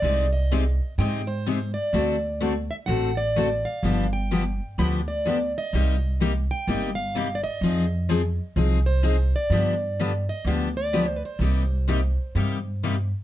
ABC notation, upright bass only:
X:1
M:4/4
L:1/8
Q:"Swing" 1/4=127
K:Cm
V:1 name="Upright bass" clef=bass
C,,4 A,,4 | D,,4 =A,,,4 | G,,,4 D,,4 | C,,4 G,,,4 |
F,,4 C,,4 | G,,4 D,,4 | C,,4 G,,4 |]